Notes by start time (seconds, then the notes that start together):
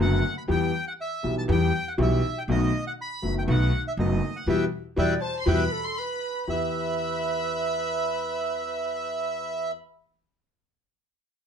0.00 F#1 F#2 D3 A3 B3 F#4 F#5
0.38 B5
0.48 E2 E3 G3 B3 G4 G5
0.88 F#5
1.01 E5
1.23 B1 B2 E3 G3 B3 G4
1.38 A5
1.48 E2 E3 G3 B3 G4 G5
1.88 F#5
1.98 B1 B2 E3 G3 B3 G4
2.02 E5
2.38 G5
2.48 B1 B2 D#3 A3 B3 F#4 D#5
2.87 F#5
3.01 B5
3.22 F#1 F#2 D#3 A3 B3 F#4
3.38 G5
3.47 B1 B2 D#3 A3 B3 F#4 F#5
3.88 E5
3.97 F#1 F#2 D#3 A3 B3 F#4 D#5
4.36 F#5
4.46 E2 B2 E3 G3 B4 E5 G5
4.96 E2 B2 E3 G3 B4 D5 E5 G5
5.21 C5 A5
5.39 C6
5.46 E2 B2 E3 G3 B4 E5 G5 B5
5.72 A4
5.85 C6
5.98 B4 B5
6.47 E2 B3 E4 G4 B4 E5 B5